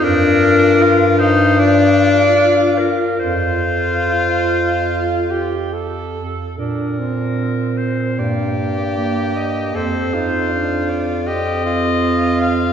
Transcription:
X:1
M:4/4
L:1/8
Q:1/4=77
K:Fmix
V:1 name="Clarinet"
B3 c d3 B | c6 z2 | B3 c d3 e | c3 d e3 f |]
V:2 name="Tenor saxophone"
D2 F E D3 z | F6- F z | z4 G4 | A F3 G F3 |]
V:3 name="Alto saxophone"
F4 F4 | F2 F3 G A2 | D C3 B,2 B,2 | C E D2 C4 |]
V:4 name="Bass clarinet" clef=bass
G,,8 | F,,6- F,, z | B,,4 G,,4 | F,,8 |]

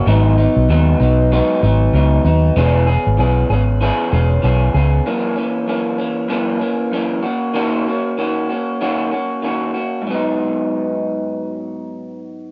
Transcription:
X:1
M:4/4
L:1/16
Q:"Swing 16ths" 1/4=96
K:G#m
V:1 name="Clean electric guitar"
[G,,F,B,D]2 [F,B,D]2 [G,,F,B,D]2 [F,B,D]2 [G,,F,B,D]2 [F,B,D]2 [G,,F,B,D]2 [F,B,D]2 | [E,B,CG]2 [B,CG]2 [E,B,CG]2 [B,CG]2 [E,B,CG]2 [B,CG]2 [E,B,CG]2 [B,CG]2 | [F,,E,A,C]2 [E,A,C]2 [F,,E,A,C]2 [E,A,C]2 [F,,E,A,C]2 [E,A,C]2 [F,,E,A,C]2 [A,CF]2 | [D,A,CF]2 [A,CF]2 [D,A,CF]2 [A,CF]2 [D,A,CF]2 [A,CF]2 [D,A,CF]2 [A,CF]2 |
[G,,F,B,D]16 |]
V:2 name="Fingered electric bass" clef=bass
G,,,3 B,,, D,,2 B,,,3 z G,,,2 C,,2 D,,2 | E,,,3 G,,, B,,,2 G,,,3 z E,,,2 B,,,2 C,,2 | z16 | z16 |
z16 |]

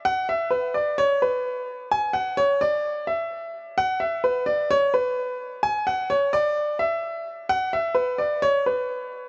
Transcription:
X:1
M:4/4
L:1/8
Q:1/4=129
K:Bdor
V:1 name="Grand piano"
f e B d c B3 | g f c d2 e3 | f e B d c B3 | g f c d2 e3 |
f e B d c B3 |]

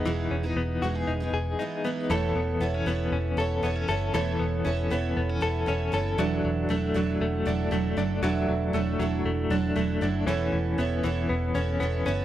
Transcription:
X:1
M:4/4
L:1/16
Q:1/4=117
K:Alyd
V:1 name="Twelve-string acoustic guitar"
[E,G,B,D]3 [G,B,D]3 [E,G,B,D]3 [G,B,D]3 [E,G,B,D]2 [E,G,B,D]2 | [E,A,B,EAc]4 [B,EAc]2 [B,EAc]4 [B,EAc]2 [B,EAc]2 [B,EAc]2 | [E,A,B,EAc]4 [B,EAc]2 [B,EAc]4 [B,EAc]2 [B,EAc]2 [B,EAc]2 | [E,F,=DEA]4 [F,DEA]2 [F,DEA]4 [F,DEA]2 [F,DEA]2 [F,DEA]2 |
[E,F,=DEA]4 [F,DEA]2 [F,DEA]4 [F,DEA]2 [F,DEA]2 [F,DEA]2 | [E,A,B,EAc]4 [B,EAc]2 [B,EAc]4 [B,EAc]2 [B,EAc]2 [B,EAc]2 |]
V:2 name="Clean electric guitar"
[E,B,DG]2 C D B,2 F G D2 G2 D2 B,2 | [E,A]2 B,2 B, C B,2 C2 A2 B, C A2 | [E,A]2 B,2 C2 B,2 B, C A2 C2 A2 | [F,=D]2 F,2 A,2 F,2 A,2 D2 A,2 D2 |
[F,=D]2 F,2 A,2 F,2 A,2 D2 A,2 D2 | [E,C]2 E,2 B,2 E,2 B,2 C2 B,2 C2 |]
V:3 name="Picked electric bass" clef=bass
E,,,2 E,,,2 E,,,2 E,,,2 E,,,2 E,,,2 z4 | E,,,2 E,,,2 E,,,2 E,,,2 E,,,2 E,,,2 E,,,2 F,,,2 | E,,,2 E,,,2 E,,,2 E,,,2 E,,,2 E,,,2 E,,,2 F,,,2 | E,,,2 E,,,2 E,,,2 E,,,2 E,,,2 E,,,2 E,,,2 F,,,2 |
E,,,2 E,,,2 E,,,2 E,,,2 E,,,2 E,,,2 E,,,2 F,,,2 | E,,,2 E,,,2 E,,,2 E,,,2 E,,,2 E,,,2 E,,,2 F,,,2 |]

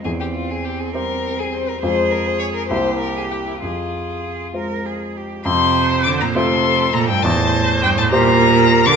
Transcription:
X:1
M:6/8
L:1/16
Q:3/8=68
K:Fm
V:1 name="Viola"
z12 | z12 | z12 | [K:F] c6 A6 |
c6 B6 |]
V:2 name="Violin"
A G F A G A B3 A c B | c2 B c d B c2 B A G =E | F6 z6 | [K:F] c'4 d' b c'4 b g |
a4 g a b4- b d' |]
V:3 name="Grand piano"
=E,,6 [G,Gc]6 | [F,,A,Fc]6 [C,,B,=Ec]6 | F,,6 [A,Fc]6 | [K:F] F,,6 [A,Fc]6 |
E,,6 [G,Gc]6 |]
V:4 name="Cello" clef=bass
C12 | A6 G6 | A6 B2 A2 G2 | [K:F] C,4 D, B,, C,4 B,, G,, |
A,,4 G,, A,, B,,4- B,, D, |]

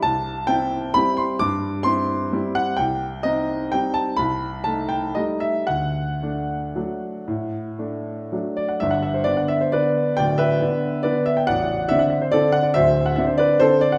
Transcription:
X:1
M:3/4
L:1/16
Q:1/4=131
K:G
V:1 name="Grand piano"
a4 g4 b2 c'2 | d'4 c'6 f2 | g4 _e4 g2 a2 | b4 a2 g2 _e2 =e2 |
f12- | f8 z2 d f | e f e c d f e c [Bd]4 | [dg]2 [Be]6 [Bd]2 e g |
[df]4 e f e c [Ad]2 f d | [ce]3 f e c [Bd]2 [Ac]2 d f |]
V:2 name="Grand piano"
C,,4 [CE]4 [G,CE]4 | G,,4 [CE]4 [G,CE]4 | C,,4 [C_E]4 [G,CE]4 | C,,4 [A,_E]4 [G,A,E]4 |
D,,4 [A,D]4 [F,A,D]4 | A,,4 [A,D]4 [F,A,D]4 | [G,,,G,,]4 [D,B,D]4 [D,B,D]4 | [D,,,D,,]4 [D,B,D]4 [D,B,D]4 |
[A,,,,A,,,]4 [D,CD]4 [D,CD]4 | [D,,,D,,]4 [D,CD]4 [D,CD]4 |]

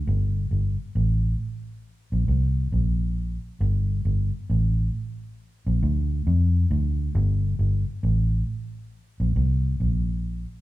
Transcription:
X:1
M:4/4
L:1/16
Q:"Swing 16ths" 1/4=68
K:Gm
V:1 name="Fingered electric bass" clef=bass
G,,,2 G,,, z A,,,2 z3 B,,, C,,2 B,,,3 z | G,,,2 G,,, z A,,,2 z3 B,,, D,,2 F,,2 D,,2 | G,,,2 G,,, z A,,,2 z3 B,,, C,,2 B,,,3 z |]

